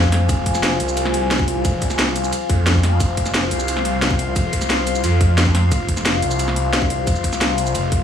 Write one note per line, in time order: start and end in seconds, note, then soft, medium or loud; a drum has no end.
0.00 0.28 F2 loud
0.00 8.04 F4 medium
0.00 8.04 C5 medium
0.00 8.04 F5 medium
0.00 2.98 G#5 medium
0.00 kick medium
0.12 snare medium
0.12 closed hi-hat loud
0.12 ride bell medium
0.29 0.79 F1 loud
0.29 kick loud
0.29 closed hi-hat medium
0.29 ride bell medium
0.29 shaker soft
0.46 kick medium
0.46 closed hi-hat loud
0.46 ride bell medium
0.55 snare soft
0.55 shaker medium
0.63 snare loud
0.63 closed hi-hat medium
0.63 ride bell medium
0.63 shaker soft
0.80 1.63 C2 loud
0.80 closed hi-hat medium
0.80 ride bell medium
0.80 shaker soft
0.89 shaker medium
0.97 closed hi-hat medium
0.97 ride bell medium
0.97 shaker soft
1.05 snare soft
1.14 closed hi-hat medium
1.14 ride bell medium
1.31 snare loud
1.31 closed hi-hat medium
1.31 ride bell medium
1.31 shaker soft
1.39 kick loud
1.48 closed hi-hat loud
1.48 ride bell medium
1.65 1.80 F1 loud
1.65 kick loud
1.65 closed hi-hat medium
1.65 ride bell medium
1.65 shaker soft
1.82 2.31 C2 loud
1.82 kick medium
1.82 closed hi-hat medium
1.82 ride bell medium
1.82 shaker soft
1.90 snare soft
1.90 shaker medium
1.99 snare loud
1.99 closed hi-hat medium
1.99 ride bell medium
1.99 shaker soft
2.16 closed hi-hat medium
2.16 ride bell medium
2.16 shaker soft
2.24 shaker medium
2.33 closed hi-hat medium
2.33 ride bell medium
2.33 shaker soft
2.50 2.99 F2 loud
2.50 kick loud
2.50 closed hi-hat medium
2.50 ride bell medium
2.67 snare loud
2.67 closed hi-hat medium
2.67 ride bell medium
2.67 shaker medium
2.75 kick medium
2.83 snare medium
2.83 closed hi-hat medium
2.83 ride bell medium
3.00 3.50 F1 loud
3.00 8.04 C6 medium
3.00 kick loud
3.00 closed hi-hat medium
3.00 ride bell medium
3.00 shaker medium
3.17 kick medium
3.17 closed hi-hat medium
3.17 ride bell medium
3.26 snare soft
3.26 shaker medium
3.34 snare loud
3.34 closed hi-hat medium
3.34 ride bell medium
3.34 shaker medium
3.51 4.35 C2 loud
3.51 closed hi-hat medium
3.51 ride bell medium
3.51 shaker soft
3.60 shaker medium
3.68 closed hi-hat medium
3.68 ride bell medium
3.68 shaker medium
3.77 snare soft
3.85 closed hi-hat medium
3.85 ride bell medium
4.02 snare loud
4.02 closed hi-hat medium
4.02 ride bell medium
4.02 shaker medium
4.11 kick loud
4.19 closed hi-hat medium
4.19 ride bell medium
4.36 4.52 F1 medium
4.36 kick loud
4.36 closed hi-hat medium
4.36 ride bell medium
4.36 shaker medium
4.53 5.02 C2 loud
4.53 kick medium
4.53 closed hi-hat medium
4.53 ride bell medium
4.53 shaker soft
4.61 snare soft
4.61 shaker medium
4.70 snare loud
4.70 closed hi-hat medium
4.70 ride bell medium
4.70 shaker medium
4.87 closed hi-hat medium
4.87 ride bell medium
4.87 shaker soft
4.95 shaker medium
5.04 5.19 F2 loud
5.04 closed hi-hat medium
5.04 ride bell medium
5.04 shaker medium
5.21 5.70 F2 loud
5.21 kick loud
5.21 closed hi-hat medium
5.21 ride bell medium
5.38 snare loud
5.38 closed hi-hat medium
5.38 ride bell medium
5.38 shaker medium
5.46 kick medium
5.55 snare medium
5.55 closed hi-hat medium
5.55 ride bell medium
5.72 6.21 F1 loud
5.72 kick loud
5.72 closed hi-hat medium
5.72 ride bell medium
5.72 shaker medium
5.89 kick medium
5.89 closed hi-hat loud
5.89 ride bell medium
5.97 snare soft
5.97 shaker medium
6.05 snare loud
6.05 closed hi-hat medium
6.05 ride bell medium
6.05 shaker medium
6.22 7.06 C2 loud
6.22 closed hi-hat loud
6.22 ride bell medium
6.22 shaker soft
6.31 shaker medium
6.39 closed hi-hat medium
6.39 ride bell medium
6.39 shaker medium
6.48 snare soft
6.56 closed hi-hat loud
6.56 ride bell medium
6.73 snare loud
6.73 closed hi-hat medium
6.73 ride bell medium
6.73 shaker medium
6.82 kick loud
6.90 closed hi-hat medium
6.90 ride bell medium
7.07 7.23 F1 loud
7.07 kick loud
7.07 closed hi-hat medium
7.07 ride bell medium
7.07 shaker medium
7.16 shaker soft
7.24 7.74 C2 loud
7.24 kick medium
7.24 closed hi-hat loud
7.24 ride bell medium
7.24 shaker soft
7.33 snare soft
7.33 shaker medium
7.41 snare loud
7.41 closed hi-hat medium
7.41 ride bell medium
7.41 shaker medium
7.58 closed hi-hat loud
7.58 ride bell medium
7.58 shaker soft
7.66 shaker medium
7.75 8.04 F1 loud
7.75 closed hi-hat medium
7.75 ride bell medium
7.75 shaker medium
7.92 kick loud
7.92 closed hi-hat loud
7.92 ride bell medium